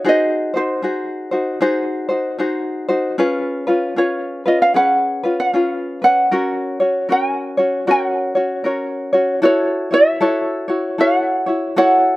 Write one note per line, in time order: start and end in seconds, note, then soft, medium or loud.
0.04 0.54 D#4 medium
0.04 0.54 F#4 medium
0.04 0.54 G#4 medium
0.04 0.52 C5 medium
0.09 0.58 D#5 medium
0.54 0.82 D#4 soft
0.54 0.83 F#4 soft
0.54 0.83 C5 soft
0.54 2.87 C5 medium
0.82 1.32 D#4 medium
0.82 1.31 F#4 medium
0.82 1.32 G#4 medium
0.82 1.30 C5 medium
1.31 1.60 D#4 soft
1.31 1.61 F#4 soft
1.31 1.61 C5 medium
1.61 2.10 D#4 medium
1.61 2.09 F#4 medium
1.61 2.10 G#4 medium
1.61 2.07 C5 medium
2.09 2.38 D#4 soft
2.09 2.38 F#4 soft
2.09 2.39 C5 medium
2.39 2.89 D#4 medium
2.39 2.88 F#4 medium
2.39 2.89 G#4 medium
2.39 2.87 C5 medium
2.88 3.18 D#4 soft
2.88 3.19 F#4 soft
2.88 3.18 C5 medium
3.18 3.68 C#4 medium
3.18 3.67 F4 medium
3.18 3.67 G#4 medium
3.18 3.66 B4 medium
3.67 3.95 C#4 soft
3.67 3.96 F4 medium
3.67 3.97 B4 medium
3.96 4.46 C#4 medium
3.96 4.45 F4 medium
3.96 4.46 G#4 medium
3.96 4.44 B4 medium
3.96 4.43 C#5 medium
4.46 4.74 C#4 soft
4.46 4.74 F4 medium
4.46 4.75 B4 medium
4.46 4.62 D#5 medium
4.62 4.76 F5 medium
4.74 5.24 C#4 medium
4.74 5.23 G#4 medium
4.74 5.22 B4 medium
4.74 5.35 F#5 medium
5.23 5.53 C#4 soft
5.23 5.53 F4 soft
5.23 5.53 B4 soft
5.40 5.51 F#5 medium
5.51 6.02 C#4 medium
5.51 6.03 F4 medium
5.51 6.01 G#4 medium
5.51 5.99 F5 medium
5.56 6.01 B4 medium
6.02 6.31 C#4 soft
6.02 6.31 B4 soft
6.02 7.12 F#5 medium
6.31 6.80 C#4 medium
6.31 6.80 F#4 medium
6.31 6.80 A#4 medium
6.31 6.79 C#5 medium
6.80 7.08 C#4 soft
6.80 7.09 F#4 soft
6.80 7.09 C#5 soft
7.09 7.58 C#4 medium
7.09 7.58 F#4 medium
7.09 7.58 A#4 medium
7.09 7.56 C#5 medium
7.09 7.90 G#5 medium
7.57 7.86 C#4 soft
7.57 7.86 F#4 soft
7.57 7.87 C#5 soft
7.87 8.36 C#4 medium
7.87 8.35 F#4 medium
7.87 8.36 A#4 medium
7.87 8.34 C#5 medium
7.87 9.12 F#5 medium
8.35 8.64 C#4 soft
8.35 8.64 F#4 soft
8.35 8.65 C#5 soft
8.64 9.13 C#4 medium
8.64 9.13 F#4 medium
8.64 9.13 A#4 medium
8.64 9.11 C#5 medium
9.13 9.43 C#4 soft
9.13 9.42 F#4 medium
9.13 9.41 C#5 medium
9.42 9.91 E4 medium
9.42 9.91 F#4 medium
9.42 9.91 A4 medium
9.42 9.89 C#5 medium
9.42 9.94 C#5 medium
9.91 10.20 E4 soft
9.91 10.20 F#4 soft
9.91 10.20 C#5 medium
9.91 11.00 E5 medium
10.21 10.69 E4 medium
10.21 10.68 F#4 medium
10.21 10.69 A4 medium
10.21 10.67 C#5 medium
10.68 10.98 E4 soft
10.68 10.98 F#4 medium
10.68 10.98 C#5 medium
10.98 11.47 E4 medium
10.98 11.46 F#4 medium
10.98 11.47 A4 soft
10.98 11.45 C#5 medium
10.98 11.77 F#5 medium
11.46 11.76 E4 soft
11.46 11.76 F#4 soft
11.46 11.76 C#5 medium
11.76 12.17 E4 medium
11.76 12.17 F#4 medium
11.76 12.17 A4 medium
11.76 12.17 C#5 medium
11.76 12.17 F#5 loud